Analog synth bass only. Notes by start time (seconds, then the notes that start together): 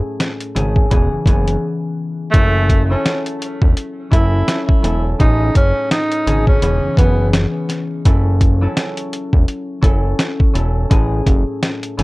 0.56 G#1
0.92 E1
1.12 F#1
1.26 F#1
2.34 F#1
3.62 E1
4.11 F#1
4.84 E1
5.20 A1
5.55 F#1
6.27 G#1
6.63 E1
6.97 F#1
8.05 F#1
9.33 E1
9.83 F#1
10.55 E1
10.91 A1
11.27 F#1
11.99 G#1